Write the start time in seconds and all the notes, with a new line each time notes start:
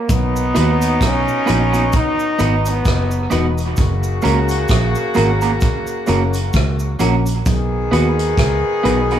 Already playing: A#3
0.08 B1 F#3 B3 D#4, kick, closed hi-hat, cabasa
0.36 cabasa
0.54 D#2 B3 D#4 F#4 B4, closed hi-hat, cabasa
0.82 closed hi-hat, cabasa
1.01 B1, kick, cross-stick, closed hi-hat, cabasa
1.05 C#4
1.28 cabasa
1.46 A#1 B3 D#4 F#4 B4, closed hi-hat, cabasa
1.72 B3 D#4 F#4 B4, closed hi-hat, cabasa
1.92 kick, closed hi-hat, cabasa
1.97 D#4
2.19 cabasa
2.39 G#1 B3 D#4 F#4 B4, closed hi-hat, cabasa
2.66 closed hi-hat, cabasa
2.70 B3
2.85 F#1, kick, cross-stick, closed hi-hat, cabasa
3.11 cabasa
3.30 E1 B3 D#4 F#4 B4, closed hi-hat, cabasa
3.34 B3
3.58 closed hi-hat, cabasa
3.76 F#1 C#3 A#3 F#4, kick, closed hi-hat, cabasa
4.03 cabasa
4.22 C#2 A#3 C#4 F#4 A#4, closed hi-hat, cabasa
4.49 closed hi-hat, cabasa
4.68 A#1, kick, cross-stick, closed hi-hat, cabasa
4.95 cabasa
5.14 G#1 A#3 C#4 F#4 A#4, closed hi-hat, cabasa
5.41 A#3 C#4 F#4 A#4, closed hi-hat, cabasa
5.61 kick, closed hi-hat, cabasa
5.87 cabasa
6.06 F#1 A#3 C#4 F#4 A#4, closed hi-hat, cabasa
6.34 closed hi-hat, cabasa
6.53 C#2, kick, cross-stick, closed hi-hat, cabasa
6.79 cabasa
6.99 A#1 A#3 C#4 F#4 A#4, closed hi-hat, cabasa
7.26 closed hi-hat, cabasa
7.45 B1 D#3 B3 G#4, kick, closed hi-hat, cabasa
7.91 D#2 B3 D#4 F#4 B4, closed hi-hat
8.19 closed hi-hat
8.37 C#2, kick, cross-stick, closed hi-hat
8.83 B1 B3 D#4 F#4 B4, closed hi-hat
9.11 B3 D#4 F#4 B4, closed hi-hat